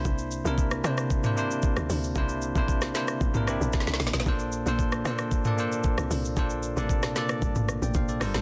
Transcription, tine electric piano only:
\new Staff \with { instrumentName = "Tine electric piano" } { \time 4/4 \key bes \lydian \tempo 4 = 114 << { r1 | r1 | r1 | r2 r8. <d'' g''>16 <c'' f''>16 <a' d''>8 r16 | } \\ { <c bes d' e' c''>8 r16 <c bes d' e' bes'>8 r16 <c bes d' e' c''>8 r16 <c bes d' e' c''>16 <c bes d' e' c''>4~ <c bes d' e' c''>16 r16 | <c bes d' e' c''>8 r16 <c bes d' e' c''>8 r16 <c bes d' e' c''>8 r16 <c bes d' e' bes'>16 <c bes d' e' g'>4~ <c bes d' e' g'>16 r16 | <bes, bes d' a' c''>8 r16 <bes, bes d' a' c''>8 r16 <bes, bes d' a' c''>8 r16 <bes, bes d' a' d''>16 <bes, bes d' a' c''>4~ <bes, bes d' a' c''>16 r16 | <bes, bes d' a' c''>8 r16 <c bes d' a' d''>8 r16 <bes, bes d' a' d''>8 r4. <g d' f' a' bes' c''>8 | } >> }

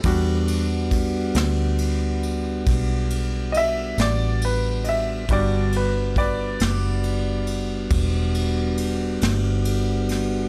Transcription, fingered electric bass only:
\new Staff \with { instrumentName = "Fingered electric bass" } { \clef bass \time 12/8 \key e \minor \tempo 4. = 46 e,4. d,4. b,,4. a,,4. | g,,4. fis,,4. e,,4. g,,4. | }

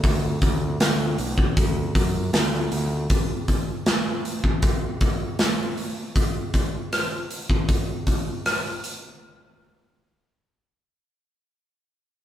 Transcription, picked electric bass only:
\new Staff \with { instrumentName = "Picked electric bass" } { \clef bass \time 4/4 \key d \major \tempo 4 = 78 d,8 d,8 d,8 b,,8 d,8 fis,8 d,8 d,8 | r1 | r1 | r1 | }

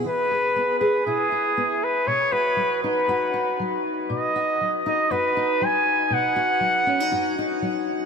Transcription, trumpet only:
\new Staff \with { instrumentName = "Trumpet" } { \time 4/4 \key b \major \tempo 4 = 119 b'4. b'8 gis'4. b'8 | cis''8 b'4 b'2 r8 | dis''4. dis''8 b'4 gis''4 | fis''2. r4 | }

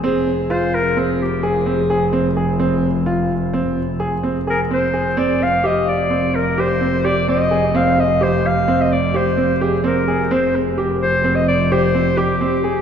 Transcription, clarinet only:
\new Staff \with { instrumentName = "Clarinet" } { \time 11/8 \key f \dorian \tempo 4 = 128 aes'4 c''8 bes'8 aes'8 g'8 aes'4. r4 | r1 bes'8 c''4 | d''8 f''8 ees''8 d''4 bes'8 c''4 d''8 ees''4 | f''8 ees''8 c''8 f''8. ees''16 d''8 c''4 aes'8 bes'4 |
c''8 aes'8 r8 c''8. ees''16 d''8 c''4 g'4. | }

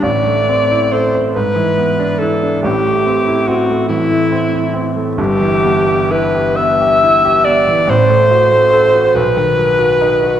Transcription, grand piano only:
\new Staff \with { instrumentName = "Grand piano" } { \time 6/8 \key a \dorian \tempo 4. = 46 <a,, a,>16 a16 c'16 e'16 a'16 c''16 gis,16 e16 b16 d'16 e'16 d'16 | <a,, a,>16 a16 c'16 e'16 c'16 a16 e16 a16 c'16 e'16 c'16 a16 | \key e \minor <g,, g,>16 e16 b16 g'16 e'16 g'16 b16 g'16 e'16 g'16 b16 e16 | <a,, a,>16 a16 fis'16 a16 a'16 fis'16 b,,16 dis16 fis16 fis'16 dis'16 fis'16 | }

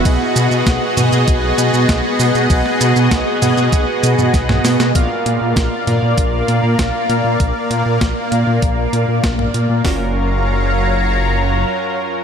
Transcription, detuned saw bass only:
\new Staff \with { instrumentName = "Detuned saw bass" } { \clef bass \time 4/4 \key ais \phrygian \tempo 4 = 98 b,,16 r16 b,16 b,16 b,,16 r16 b,16 b,16 b,,8 b,16 b,16 b,,16 r16 b,16 b,16 | b,,16 r16 b,16 b,16 b,,16 r16 b,16 b,16 b,,16 r16 b,16 b,16 b,,8 b,16 b,16 | ais,,16 r16 ais,16 ais,16 ais,,16 r16 ais,16 ais,16 ais,,8 ais,16 ais,16 ais,,16 r16 ais,16 ais,16 | ais,,16 r16 ais,16 ais,16 ais,,16 r16 ais,16 ais,16 ais,,8 ais,16 ais,16 ais,,8 ais,16 ais,16 |
fis,,2. r4 | }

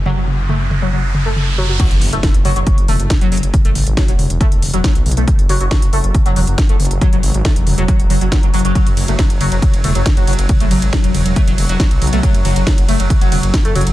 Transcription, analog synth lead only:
\new Staff \with { instrumentName = "Analog synth lead" } { \clef bass \time 4/4 \key e \mixolydian \tempo 4 = 138 fis16 fis16 r8 a16 r8 fis16 fis16 r8 a16 r8 fis16 fis16 | fis16 r8 a16 r8 fis16 fis16 r8 a16 r8 fis16 fis16 r16 | r16 a16 r8 fis16 fis16 r8 a16 r8 fis16 fis16 r8 a16 | r8 fis16 fis16 r8 a16 r8 fis16 fis16 r8 a16 r8 |
fis16 fis16 r8 a16 r8 fis16 fis16 r16 fis16 fis16 fis16 fis16 fis16 fis16 | fis16 r8 a16 fis16 r16 fis16 fis16 r8 a16 fis16 r16 fis16 fis16 r16 | r16 a16 fis16 r16 fis16 fis16 r8 a16 fis16 r16 fis16 fis16 r8 a16 | fis16 r16 fis16 fis16 r8 a16 fis16 r16 fis16 fis16 r8 a16 fis16 r16 | }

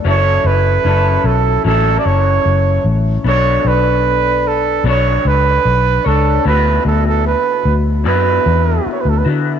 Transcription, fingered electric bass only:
\new Staff \with { instrumentName = "Fingered electric bass" } { \clef bass \time 4/4 \key b \minor \tempo 4 = 75 fis,,8 fis,,8 fis,,8 b,,8 a,,8 fis,,8 fis,,8 a,,8 | b,,8 b,,4. b,,8 cis,8 b,,8 cis,8 | d,8 d,8. r16 d,8 fis,8 e,8 r16 d,16 d8 | }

